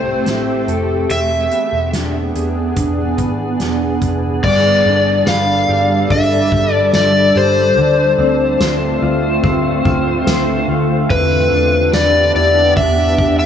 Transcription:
Already playing: picked electric bass C2, clean electric guitar A2 C4 E4 A4, ambient pad A3 C4 G4, electric slide guitar C5
0.26 picked electric bass A1, clean electric guitar E4, snare, closed hi-hat
0.68 picked electric bass F1, clean electric guitar A4, closed hi-hat
1.10 picked electric bass E1, clean electric guitar E3 G#4, ambient pad E3 B3 D4 G#4, electric slide guitar E5, closed hi-hat
1.51 clean electric guitar B3, closed hi-hat
1.73 picked electric bass E1
1.93 picked electric bass E1, clean electric guitar D4, snare, closed hi-hat
2.35 picked electric bass E2, clean electric guitar G#4, closed hi-hat
2.76 picked electric bass E1, clean electric guitar D4, kick, closed hi-hat
3.18 picked electric bass G#1, clean electric guitar B3, kick, closed hi-hat
3.60 picked electric bass E1, clean electric guitar D4, snare, closed hi-hat
4.02 picked electric bass F1, clean electric guitar G#4, kick, closed hi-hat
4.44 picked electric bass G1, ambient pad G3 D4 A4 D5, clean electric guitar G3, electric slide guitar D5, kick, crash
4.85 picked electric bass G1, clean electric guitar D4, ride
5.27 picked electric bass G1, clean electric guitar B4, electric slide guitar F5, snare, ride, tambourine
5.68 picked electric bass G1, clean electric guitar G4, ride
6.10 picked electric bass G1, clean electric guitar D4, electric slide guitar E5, kick, ride
6.52 picked electric bass G1, clean electric guitar G4, kick
6.74 electric slide guitar D5
6.93 picked electric bass G1, electric slide guitar D5, snare, ride, tambourine
7.35 picked electric bass G1, clean electric guitar G4, electric slide guitar C5, ride
7.77 picked electric bass D2, ambient pad D3 A3 C4 F4, clean electric guitar D3, ride
8.19 picked electric bass D2, clean electric guitar C4, ride
8.60 picked electric bass D2, clean electric guitar C5, snare, ride, tambourine
9.02 picked electric bass D2, clean electric guitar F4, ride
9.44 picked electric bass D2, clean electric guitar C4, kick, ride
9.85 picked electric bass D2, clean electric guitar F4, kick, ride
10.27 picked electric bass D2, clean electric guitar C5, snare, ride, tambourine
10.68 picked electric bass D2, clean electric guitar F4, ride
11.10 picked electric bass E2, ambient pad E3 B3 D4 G4, clean electric guitar E3, electric slide guitar B4, kick, ride
11.51 picked electric bass E2, clean electric guitar D4, ride
11.93 picked electric bass E2, clean electric guitar B4, electric slide guitar D5, snare, ride, tambourine
12.35 picked electric bass E2, clean electric guitar E4, electric slide guitar D5, ride
12.77 picked electric bass E2, clean electric guitar D4, electric slide guitar E5, kick, ride
13.18 picked electric bass E2, kick, ride
13.39 electric slide guitar F5

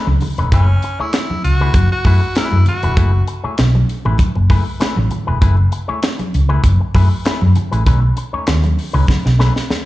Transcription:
0.07 fingered electric bass C#2, high conga
0.21 muted clean electric guitar stroke, open hi-hat, low conga
0.38 fingered electric bass E1, clean electric guitar A3 C#4 D#4 B4, closed hi-hat
0.52 fingered electric bass F#1, clean electric guitar A3 E4 G#4 B4, tenor saxophone C#4, kick, closed hi-hat, muted conga
0.68 muted clean electric guitar stroke, muted conga
0.82 muted clean electric guitar stroke, closed hi-hat
1.00 clean electric guitar A3 E4 G#4 C#5, tenor saxophone E4, muted fingered electric bass stroke
1.13 muted clean electric guitar stroke, snare, clap, closed hi-hat
1.30 muted clean electric guitar stroke, muted fingered electric bass stroke, high conga
1.44 fingered electric bass C#2, tenor saxophone F#4, closed hi-hat
1.60 clean electric guitar A3 E4 G#4 B4, low conga
1.73 fingered electric bass F#1, muted clean electric guitar stroke, kick, closed hi-hat, muted conga, high conga
1.91 tenor saxophone F#4, muted clean electric guitar stroke, muted conga
2.04 fingered electric bass F#2, clean electric guitar A3 E4 G#4 B4, kick, open hi-hat, high conga
2.23 muted clean electric guitar stroke
2.35 clean electric guitar A3 E4 G#4 B4, tenor saxophone E4, snare, clap, closed hi-hat, muted conga
2.52 fingered electric bass F#2, muted conga, high conga
2.66 tenor saxophone F#4, muted clean electric guitar stroke, closed hi-hat, low conga
2.83 fingered electric bass E1, clean electric guitar A3 E4 G#4 B4, closed hi-hat
2.97 fingered electric bass F#1, clean electric guitar A3 E4 G#4 B4, kick, closed hi-hat
3.13 muted clean electric guitar stroke
3.27 muted clean electric guitar stroke, closed hi-hat
3.44 clean electric guitar A3 E4 G#4 C#5, muted fingered electric bass stroke
3.58 fingered electric bass B1, muted clean electric guitar stroke, snare, clap, closed hi-hat
3.75 muted clean electric guitar stroke, muted conga, high conga
3.89 closed hi-hat
4.05 fingered electric bass A1, clean electric guitar A3 E4 G#4 B4, low conga
4.18 muted fingered electric bass stroke, kick, closed hi-hat, muted conga, high conga
4.35 fingered electric bass F#1, muted clean electric guitar stroke, muted conga
4.49 clean electric guitar A3 E4 G#4 B4, kick, open hi-hat, high conga
4.66 muted clean electric guitar stroke
4.80 clean electric guitar A3 E4 G#4 B4, muted fingered electric bass stroke, snare, clap, closed hi-hat
4.96 fingered electric bass A1, muted conga, high conga
5.10 muted clean electric guitar stroke, closed hi-hat, low conga
5.27 fingered electric bass E1, clean electric guitar A3 E4 G#4 B4
5.41 fingered electric bass F#1, clean electric guitar A3 E4 G#4 B4, kick, closed hi-hat
5.57 muted conga
5.72 muted clean electric guitar stroke, closed hi-hat
5.88 clean electric guitar A3 E4 G#4 C#5, muted fingered electric bass stroke
6.02 muted clean electric guitar stroke, snare, clap, closed hi-hat
6.18 muted clean electric guitar stroke, muted fingered electric bass stroke, closed hi-hat, muted conga, high conga
6.34 fingered electric bass C#2, closed hi-hat
6.49 clean electric guitar A3 E4 G#4 B4, low conga
6.63 fingered electric bass F#1, muted clean electric guitar stroke, kick, closed hi-hat, high conga
6.80 muted clean electric guitar stroke
6.95 fingered electric bass F#2, clean electric guitar A3 E4 G#4 B4, kick, open hi-hat, high conga
7.11 muted clean electric guitar stroke
7.25 clean electric guitar A3 E4 G#4 B4, snare, clap, closed hi-hat
7.41 fingered electric bass F#2, high conga
7.55 muted clean electric guitar stroke, closed hi-hat, low conga
7.71 fingered electric bass A1, clean electric guitar A3 E4 G#4 B4, closed hi-hat
7.86 fingered electric bass B1, clean electric guitar A3 C#4 D#4 B4, kick, closed hi-hat, low conga
8.02 muted clean electric guitar stroke, muted conga
8.17 muted clean electric guitar stroke, closed hi-hat
8.33 clean electric guitar A3 C#4 D#4 C#5, muted fingered electric bass stroke
8.47 fingered electric bass D#2, muted clean electric guitar stroke, snare, clap, closed hi-hat, muted conga
8.63 muted clean electric guitar stroke, closed hi-hat, high conga
8.79 open hi-hat
8.93 fingered electric bass C#2, clean electric guitar A3 C#4 D#4 B4, low conga
9.07 kick, snare, muted conga, high conga
9.25 fingered electric bass B1, muted clean electric guitar stroke, snare
9.39 clean electric guitar A3 C#4 D#4 B4, snare, high conga
9.56 snare
9.70 muted clean electric guitar stroke, muted fingered electric bass stroke, snare, muted conga

